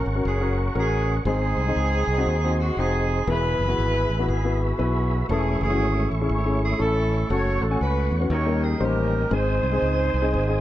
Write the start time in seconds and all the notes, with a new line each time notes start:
Already playing: C#4 F#4 A#4 C#5 F#5 C#6
0.06 G#1
0.15 C#4 F#4 A#4
0.25 F#1 C#4 G#4
0.41 C#4 F#4 A#4
0.59 F#4
0.75 A1 C#4 F#4 G#4 A#4
1.25 G#1 G#2 C4 D#4 G#4 C5 D#5 C6
1.57 C2
1.68 C4 D#4 G#4
1.76 C#2
2.07 C2
2.18 C4 D#4 F#4
2.26 D#2
2.44 C4 D#4 F#4
2.59 F#4
2.77 F1 C4 D#4 F#4 G#4
3.27 E1 E3 B3 E4 G#4 B4 E5 B5
3.59 F#1
3.68 B3 E4 F#4
3.78 G#1
4.10 A1
4.19 B3 E4 F#4
4.28 G#1 B3 E4 G#4
4.44 B3 E4 F#4
4.60 F#4
4.78 B1 B3 E4 F#4 B4
5.28 E1 E3 A3 C#4 E4 G#4 A4 C#5 E5 C#6
5.61 F#1 C#4 E4 G#4
5.71 C#4 E4 F#4
5.80 G#1
6.11 A1
6.21 C#4 E4 G#4
6.29 G#1 E4 A4 C#5
6.45 C#4 E4 G#4
6.63 G#4
6.79 A1 C#4 E4 A4
7.30 F#1 C#4 F#4 A4 C#5 F#5
7.62 A1 A4
7.71 C#4 F#4 G#5
7.81 C#2 F#4 B4
8.11 E2
8.20 C#4 F#4 B4
8.30 D#2 D#3 G4 A#4 C#5 D#5 G5
8.46 G3 A#3 C#4 D#4 A#4
8.63 G#4
8.80 A1 G3 A#3 C#4 D#4 G4 A#4 C5
9.30 G#1 G#2 C4 D#4 G#4 C5 G#5 D#6
9.63 C2
9.72 C4 D#4 G#4
9.82 C#2
10.14 C2
10.22 C4 D#4 G#4
10.34 G#1
10.48 C4 D#4 G#4